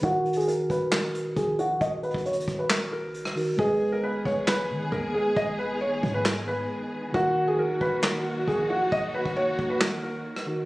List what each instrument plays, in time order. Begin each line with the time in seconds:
0.01 808-style bass D#1, tine electric piano D#3 D#4 F#4 A#4, felt piano F#4, kick, closed hi-hat
0.25 closed hi-hat
0.33 808-style bass A#1, felt piano G#4, closed hi-hat
0.40 closed hi-hat
0.48 felt piano A#4, closed hi-hat
0.70 808-style bass D#1, felt piano B4, kick, closed hi-hat
0.92 felt piano A#4, snare, clap
1.15 closed hi-hat
1.36 808-style bass A#1, felt piano G#4, kick, closed hi-hat
1.59 felt piano F#4, closed hi-hat
1.81 808-style bass D#1, felt piano D#5, kick, closed hi-hat
2.03 felt piano B4, closed hi-hat
2.11 808-style bass D#1, kick, closed hi-hat
2.18 closed hi-hat
2.25 felt piano C#5, closed hi-hat
2.33 808-style bass F#1, closed hi-hat
2.40 closed hi-hat
2.48 808-style bass D#1, kick, closed hi-hat
2.59 felt piano B4
2.70 felt piano A#4, snare, clap
2.92 felt piano A#4
3.03 808-style bass F#1
3.14 closed hi-hat
3.25 cross-stick
3.35 tine electric piano D#3 D#4 F#4 A#4, open hi-hat
3.57 808-style bass G#1, string section D#3 G#3 B3 G#4, tine electric piano G#3 G#4 B4 D#5, felt piano G#4, kick
3.92 felt piano A#4
4.03 808-style bass F#1, felt piano B4
4.14 808-style bass G#1
4.25 808-style bass G#1, felt piano C#5, kick
4.48 felt piano B4, snare, clap
4.70 808-style bass D#3
4.92 808-style bass D#2, felt piano A#4, kick
5.14 felt piano G#4
5.36 808-style bass G#1, felt piano D#5, kick
5.59 felt piano B4
5.81 felt piano C#5
6.03 808-style bass G#2, kick
6.14 felt piano B4
6.25 felt piano A#4, snare, clap
6.48 felt piano B4
7.12 808-style bass D#1, tine electric piano D#3 D#4 F#4 A#4, string section F#3 A#3 F#4, felt piano F#4, kick
7.48 808-style bass A#1, felt piano G#4
7.59 felt piano A#4
7.81 808-style bass D#1, felt piano B4, kick
8.03 felt piano A#4, snare, clap
8.48 808-style bass A#1, felt piano G#4, kick
8.70 felt piano F#4
8.92 808-style bass D#1, felt piano D#5, kick
9.14 felt piano B4
9.26 808-style bass D#1, kick
9.36 felt piano C#5
9.48 808-style bass F#1
9.59 808-style bass D#1, kick
9.70 felt piano B4
9.81 felt piano A#4, snare, clap
10.03 felt piano A#4
10.36 cross-stick
10.46 tine electric piano D#3 D#4 F#4 A#4